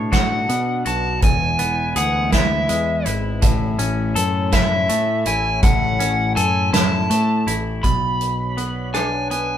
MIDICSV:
0, 0, Header, 1, 6, 480
1, 0, Start_track
1, 0, Key_signature, 3, "major"
1, 0, Tempo, 734394
1, 803, Time_signature, 6, 3, 24, 8
1, 6260, End_track
2, 0, Start_track
2, 0, Title_t, "Electric slide guitar"
2, 0, Program_c, 0, 29
2, 88, Note_on_c, 0, 78, 80
2, 539, Note_off_c, 0, 78, 0
2, 571, Note_on_c, 0, 81, 83
2, 807, Note_off_c, 0, 81, 0
2, 810, Note_on_c, 0, 80, 92
2, 1259, Note_off_c, 0, 80, 0
2, 1290, Note_on_c, 0, 78, 79
2, 1526, Note_off_c, 0, 78, 0
2, 1529, Note_on_c, 0, 76, 64
2, 2039, Note_off_c, 0, 76, 0
2, 2964, Note_on_c, 0, 76, 80
2, 3445, Note_on_c, 0, 80, 84
2, 3456, Note_off_c, 0, 76, 0
2, 3682, Note_off_c, 0, 80, 0
2, 3684, Note_on_c, 0, 78, 99
2, 4155, Note_off_c, 0, 78, 0
2, 4157, Note_on_c, 0, 80, 94
2, 4399, Note_off_c, 0, 80, 0
2, 4402, Note_on_c, 0, 81, 92
2, 4916, Note_off_c, 0, 81, 0
2, 5119, Note_on_c, 0, 83, 80
2, 5816, Note_off_c, 0, 83, 0
2, 5842, Note_on_c, 0, 80, 71
2, 6078, Note_off_c, 0, 80, 0
2, 6086, Note_on_c, 0, 80, 70
2, 6260, Note_off_c, 0, 80, 0
2, 6260, End_track
3, 0, Start_track
3, 0, Title_t, "Analog synth pad"
3, 0, Program_c, 1, 89
3, 0, Note_on_c, 1, 59, 72
3, 0, Note_on_c, 1, 62, 77
3, 789, Note_off_c, 1, 62, 0
3, 807, Note_on_c, 1, 56, 73
3, 808, Note_on_c, 1, 64, 83
3, 2215, Note_off_c, 1, 59, 0
3, 2229, Note_off_c, 1, 56, 0
3, 2236, Note_on_c, 1, 57, 73
3, 2238, Note_on_c, 1, 61, 68
3, 5093, Note_off_c, 1, 57, 0
3, 5094, Note_off_c, 1, 61, 0
3, 5098, Note_off_c, 1, 64, 0
3, 5117, Note_on_c, 1, 59, 66
3, 5117, Note_on_c, 1, 71, 65
3, 5117, Note_on_c, 1, 74, 58
3, 5118, Note_on_c, 1, 73, 58
3, 5118, Note_on_c, 1, 78, 71
3, 6260, Note_off_c, 1, 59, 0
3, 6260, Note_off_c, 1, 71, 0
3, 6260, Note_off_c, 1, 73, 0
3, 6260, Note_off_c, 1, 74, 0
3, 6260, Note_off_c, 1, 78, 0
3, 6260, End_track
4, 0, Start_track
4, 0, Title_t, "Clean electric guitar"
4, 0, Program_c, 2, 27
4, 0, Note_on_c, 2, 47, 58
4, 0, Note_on_c, 2, 62, 59
4, 0, Note_on_c, 2, 73, 60
4, 79, Note_on_c, 2, 66, 59
4, 321, Note_on_c, 2, 59, 58
4, 551, Note_off_c, 2, 66, 0
4, 559, Note_on_c, 2, 66, 55
4, 561, Note_off_c, 2, 47, 0
4, 799, Note_off_c, 2, 73, 0
4, 800, Note_off_c, 2, 62, 0
4, 801, Note_off_c, 2, 59, 0
4, 801, Note_off_c, 2, 66, 0
4, 802, Note_on_c, 2, 40, 65
4, 1039, Note_on_c, 2, 59, 60
4, 1280, Note_on_c, 2, 68, 64
4, 1520, Note_on_c, 2, 64, 66
4, 1758, Note_on_c, 2, 56, 57
4, 1995, Note_off_c, 2, 64, 0
4, 1998, Note_on_c, 2, 64, 57
4, 2001, Note_off_c, 2, 40, 0
4, 2234, Note_on_c, 2, 45, 66
4, 2239, Note_off_c, 2, 56, 0
4, 2239, Note_off_c, 2, 59, 0
4, 2240, Note_off_c, 2, 68, 0
4, 2475, Note_on_c, 2, 61, 66
4, 2715, Note_on_c, 2, 69, 73
4, 2957, Note_off_c, 2, 64, 0
4, 2960, Note_on_c, 2, 64, 66
4, 3198, Note_on_c, 2, 57, 68
4, 3434, Note_off_c, 2, 64, 0
4, 3437, Note_off_c, 2, 45, 0
4, 3442, Note_on_c, 2, 64, 63
4, 3682, Note_on_c, 2, 45, 72
4, 3916, Note_off_c, 2, 61, 0
4, 3918, Note_off_c, 2, 69, 0
4, 3919, Note_on_c, 2, 61, 71
4, 4160, Note_on_c, 2, 69, 70
4, 4394, Note_off_c, 2, 64, 0
4, 4400, Note_off_c, 2, 57, 0
4, 4401, Note_on_c, 2, 64, 66
4, 4643, Note_on_c, 2, 57, 65
4, 4876, Note_off_c, 2, 64, 0
4, 4882, Note_off_c, 2, 45, 0
4, 4884, Note_on_c, 2, 64, 60
4, 5121, Note_off_c, 2, 61, 0
4, 5121, Note_off_c, 2, 69, 0
4, 5123, Note_off_c, 2, 57, 0
4, 5123, Note_off_c, 2, 64, 0
4, 5123, Note_on_c, 2, 47, 49
4, 5604, Note_on_c, 2, 59, 46
4, 5843, Note_on_c, 2, 62, 49
4, 6076, Note_off_c, 2, 59, 0
4, 6084, Note_on_c, 2, 59, 48
4, 6260, Note_off_c, 2, 47, 0
4, 6260, Note_off_c, 2, 59, 0
4, 6260, Note_off_c, 2, 62, 0
4, 6260, End_track
5, 0, Start_track
5, 0, Title_t, "Picked electric bass"
5, 0, Program_c, 3, 34
5, 81, Note_on_c, 3, 45, 71
5, 304, Note_off_c, 3, 45, 0
5, 321, Note_on_c, 3, 47, 77
5, 544, Note_off_c, 3, 47, 0
5, 561, Note_on_c, 3, 35, 72
5, 783, Note_off_c, 3, 35, 0
5, 801, Note_on_c, 3, 28, 80
5, 1023, Note_off_c, 3, 28, 0
5, 1042, Note_on_c, 3, 28, 75
5, 1263, Note_off_c, 3, 28, 0
5, 1279, Note_on_c, 3, 38, 75
5, 1502, Note_off_c, 3, 38, 0
5, 1521, Note_on_c, 3, 38, 80
5, 1743, Note_off_c, 3, 38, 0
5, 1760, Note_on_c, 3, 40, 78
5, 1982, Note_off_c, 3, 40, 0
5, 2000, Note_on_c, 3, 32, 78
5, 2222, Note_off_c, 3, 32, 0
5, 2239, Note_on_c, 3, 33, 83
5, 2461, Note_off_c, 3, 33, 0
5, 2478, Note_on_c, 3, 33, 80
5, 2701, Note_off_c, 3, 33, 0
5, 2717, Note_on_c, 3, 42, 81
5, 2940, Note_off_c, 3, 42, 0
5, 2959, Note_on_c, 3, 42, 78
5, 3181, Note_off_c, 3, 42, 0
5, 3197, Note_on_c, 3, 45, 79
5, 3420, Note_off_c, 3, 45, 0
5, 3439, Note_on_c, 3, 33, 81
5, 3661, Note_off_c, 3, 33, 0
5, 3678, Note_on_c, 3, 33, 91
5, 3901, Note_off_c, 3, 33, 0
5, 3922, Note_on_c, 3, 33, 81
5, 4143, Note_off_c, 3, 33, 0
5, 4163, Note_on_c, 3, 42, 83
5, 4384, Note_off_c, 3, 42, 0
5, 4399, Note_on_c, 3, 42, 85
5, 4622, Note_off_c, 3, 42, 0
5, 4640, Note_on_c, 3, 45, 79
5, 4863, Note_off_c, 3, 45, 0
5, 4881, Note_on_c, 3, 33, 82
5, 5103, Note_off_c, 3, 33, 0
5, 5124, Note_on_c, 3, 35, 61
5, 6260, Note_off_c, 3, 35, 0
5, 6260, End_track
6, 0, Start_track
6, 0, Title_t, "Drums"
6, 82, Note_on_c, 9, 36, 68
6, 82, Note_on_c, 9, 38, 90
6, 82, Note_on_c, 9, 42, 70
6, 147, Note_off_c, 9, 36, 0
6, 147, Note_off_c, 9, 38, 0
6, 147, Note_off_c, 9, 42, 0
6, 323, Note_on_c, 9, 42, 57
6, 389, Note_off_c, 9, 42, 0
6, 560, Note_on_c, 9, 42, 56
6, 625, Note_off_c, 9, 42, 0
6, 799, Note_on_c, 9, 42, 69
6, 801, Note_on_c, 9, 36, 94
6, 865, Note_off_c, 9, 42, 0
6, 867, Note_off_c, 9, 36, 0
6, 1038, Note_on_c, 9, 42, 59
6, 1104, Note_off_c, 9, 42, 0
6, 1280, Note_on_c, 9, 42, 64
6, 1345, Note_off_c, 9, 42, 0
6, 1519, Note_on_c, 9, 38, 92
6, 1519, Note_on_c, 9, 42, 80
6, 1520, Note_on_c, 9, 36, 63
6, 1584, Note_off_c, 9, 38, 0
6, 1584, Note_off_c, 9, 42, 0
6, 1585, Note_off_c, 9, 36, 0
6, 1758, Note_on_c, 9, 42, 62
6, 1824, Note_off_c, 9, 42, 0
6, 1998, Note_on_c, 9, 42, 62
6, 2064, Note_off_c, 9, 42, 0
6, 2237, Note_on_c, 9, 42, 86
6, 2239, Note_on_c, 9, 36, 96
6, 2302, Note_off_c, 9, 42, 0
6, 2305, Note_off_c, 9, 36, 0
6, 2477, Note_on_c, 9, 42, 65
6, 2542, Note_off_c, 9, 42, 0
6, 2719, Note_on_c, 9, 42, 69
6, 2785, Note_off_c, 9, 42, 0
6, 2957, Note_on_c, 9, 38, 93
6, 2957, Note_on_c, 9, 42, 92
6, 2959, Note_on_c, 9, 36, 70
6, 3022, Note_off_c, 9, 38, 0
6, 3022, Note_off_c, 9, 42, 0
6, 3024, Note_off_c, 9, 36, 0
6, 3199, Note_on_c, 9, 42, 66
6, 3265, Note_off_c, 9, 42, 0
6, 3436, Note_on_c, 9, 42, 64
6, 3501, Note_off_c, 9, 42, 0
6, 3678, Note_on_c, 9, 42, 89
6, 3680, Note_on_c, 9, 36, 105
6, 3743, Note_off_c, 9, 42, 0
6, 3745, Note_off_c, 9, 36, 0
6, 3923, Note_on_c, 9, 42, 68
6, 3989, Note_off_c, 9, 42, 0
6, 4163, Note_on_c, 9, 42, 64
6, 4229, Note_off_c, 9, 42, 0
6, 4403, Note_on_c, 9, 38, 107
6, 4403, Note_on_c, 9, 42, 85
6, 4469, Note_off_c, 9, 38, 0
6, 4469, Note_off_c, 9, 42, 0
6, 4644, Note_on_c, 9, 42, 66
6, 4710, Note_off_c, 9, 42, 0
6, 4886, Note_on_c, 9, 42, 60
6, 4952, Note_off_c, 9, 42, 0
6, 5123, Note_on_c, 9, 36, 76
6, 5124, Note_on_c, 9, 42, 61
6, 5189, Note_off_c, 9, 36, 0
6, 5189, Note_off_c, 9, 42, 0
6, 5365, Note_on_c, 9, 42, 47
6, 5430, Note_off_c, 9, 42, 0
6, 5606, Note_on_c, 9, 42, 49
6, 5672, Note_off_c, 9, 42, 0
6, 5846, Note_on_c, 9, 37, 75
6, 5846, Note_on_c, 9, 42, 62
6, 5911, Note_off_c, 9, 37, 0
6, 5911, Note_off_c, 9, 42, 0
6, 6086, Note_on_c, 9, 42, 49
6, 6151, Note_off_c, 9, 42, 0
6, 6260, End_track
0, 0, End_of_file